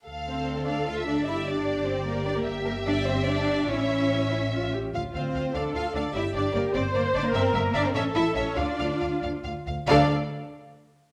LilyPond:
<<
  \new Staff \with { instrumentName = "Violin section" } { \time 6/8 \key d \minor \tempo 4. = 98 f''4. f''8. e''8. | d''2. | e''2. | e''2~ e''8 r8 |
f''8 f''8 f''8 f''8 f''8 f''8 | d''8 d''8 d''8 d''8 d''8 d''8 | e''8 e''8 e''8 e''8 e''8 e''8 | f''8 f''8 f''8 f''8 f''8 f''8 |
f''8 r2 r8 | }
  \new Staff \with { instrumentName = "Violin section" } { \time 6/8 \key d \minor r8 c''4 d''8 f''8 d''8 | e''8 d''4 c''8 bes'8 d''16 bes'16 | r8 bes'8 d''8 c''8 d''4 | cis''2~ cis''8 r8 |
r8 c''4 d''8 f''8 d''8 | e''8 d''8 bes'8 c''8 bes'8 d''16 bes'16 | c''8 bes'8 d''16 c''16 cis''8 e''8 cis''8 | d''4. r4. |
d''8 r2 r8 | }
  \new Staff \with { instrumentName = "Viola section" } { \time 6/8 \key d \minor a'2. | g'2.~ | g'2. | e'4. e'8 f'8 g'8 |
f'4. a'4. | g'4. c''4. | bes'4. a'4. | f'2~ f'16 r8. |
<a' d''>8 r2 r8 | }
  \new Staff \with { instrumentName = "Cello section" } { \time 6/8 \key d \minor r8 c'4 d'8 f'8 d'8 | e'8 d'4 c'8 bes8 d'16 bes16 | r8 bes8 d'8 c'8 d'4 | cis'2~ cis'8 r8 |
r8 c'4 d'8 f'8 d'8 | e'8 d'8 bes8 c'8 bes8 d'16 bes16 | c'8 bes8 d'16 c'16 cis'8 e'8 cis'8 | d'4. r4. |
d'8 r2 r8 | }
  \new Staff \with { instrumentName = "Double bass section" } { \clef bass \time 6/8 \key d \minor d,2. | g,,2. | g,,2. | a,,2~ a,,8 r8 |
d,8 d,8 d,8 d,8 d,8 d,8 | g,,8 g,,8 g,,8 g,,8 g,,8 g,,8 | g,,8 g,,8 g,,8 a,,8 a,,8 a,,8 | d,8 d,8 d,8 d,8 d,8 d,8 |
d,8 r2 r8 | }
>>